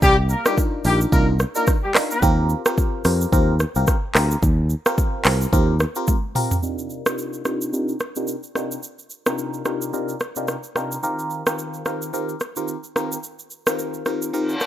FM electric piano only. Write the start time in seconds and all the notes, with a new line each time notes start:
0.45 D4 D#4 F4 A#4
0.85 D4 D#4 F4 A#4
1.12 D4 D#4 F4 A#4
1.56 D4 D#4 F4 A#4
1.95 D4 D#4 F4 A#4
2.22 C4 F4 G4 A#4
2.66 C4 F4 G4 A#4
3.05 C4 F4 G4 A#4
3.32 C4 F4 G4 A#4
3.76 C4 F4 G4 A#4
4.15 C4 F4 G4 A#4
4.86 C4 F4 G4 A#4
5.25 C4 F4 G4 A#4
5.52 C4 F4 G4 A#4
5.96 C4 F4 G4 A#4
6.35 C4 F4 G4 A#4
6.63 C3 D4 D#4 F4 G4 A#4
7.06 C3 D4 D#4 F4 G4 A#4
7.45 C3 D4 D#4 F4 G4 A#4
7.73 C3 D4 D#4 F4 G4 A#4
8.16 C3 D4 D#4 F4 G4 A#4
8.55 C3 D4 D#4 F4 G4 A#4
9.26 C3 D4 D#4 F4 G4 A#4
9.65 C3 D4 D#4 F4 G4 A#4
9.93 C3 D4 D#4 F4 G4 A#4
10.36 C3 D4 D#4 F4 G4 A#4
10.75 C3 D4 D#4 F4 G4 A#4
11.03 D#3 C4 F4 G4 A#4
11.46 D#3 C4 F4 G4 A#4
11.85 D#3 C4 F4 G4 A#4
12.13 D#3 C4 F4 G4 A#4
12.56 D#3 C4 F4 G4 A#4
12.96 D#3 C4 F4 G4 A#4
13.67 D#3 C4 F4 G4 A#4
14.06 D#3 C4 F4 G4 A#4
14.33 D#3 C4 F4 G4 A#4